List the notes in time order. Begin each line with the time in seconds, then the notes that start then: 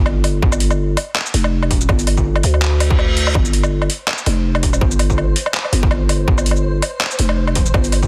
Already playing: G1
0.06 low woodblock
0.24 closed hi-hat, low woodblock
0.42 G1, kick
0.52 low woodblock, shaker
0.60 closed hi-hat
0.71 low woodblock, shaker
0.97 closed hi-hat, low woodblock
1.16 clap, low woodblock
1.26 shaker
1.34 F1, closed hi-hat
1.44 low woodblock
1.63 low woodblock
1.71 kick, closed hi-hat
1.81 shaker
1.89 G1, kick, low woodblock
1.99 closed hi-hat, shaker
2.07 closed hi-hat, low woodblock
2.17 kick, shaker
2.36 low woodblock
2.43 D2, closed hi-hat
2.54 low woodblock
2.62 clap, reverse cymbal
2.80 closed hi-hat, low woodblock, shaker
2.90 kick
2.99 low woodblock
3.17 closed hi-hat
3.27 low woodblock
3.34 G1 C5, kick, low woodblock
3.45 shaker
3.53 closed hi-hat
3.63 low woodblock, shaker
3.82 low woodblock
3.90 closed hi-hat
4.08 clap, low woodblock
4.18 shaker
4.26 F1, closed hi-hat, low woodblock
4.55 low woodblock
4.63 kick, closed hi-hat
4.73 low woodblock, shaker
4.81 G1, kick
4.91 shaker
4.99 closed hi-hat, low woodblock
5.10 kick, shaker
5.18 low woodblock
5.36 closed hi-hat
5.46 low woodblock
5.54 clap
5.65 low woodblock
5.73 G1, closed hi-hat
5.83 kick
5.91 low woodblock
6.09 closed hi-hat, low woodblock
6.28 G1, kick
6.38 low woodblock, shaker
6.46 closed hi-hat
6.51 low woodblock
6.56 shaker
6.82 closed hi-hat, low woodblock
7.01 clap, low woodblock
7.11 shaker
7.19 F1, closed hi-hat
7.29 low woodblock
7.47 low woodblock
7.55 kick, closed hi-hat
7.66 shaker
7.74 G1, kick, low woodblock
7.84 closed hi-hat, shaker
7.92 closed hi-hat, low woodblock
8.02 kick, shaker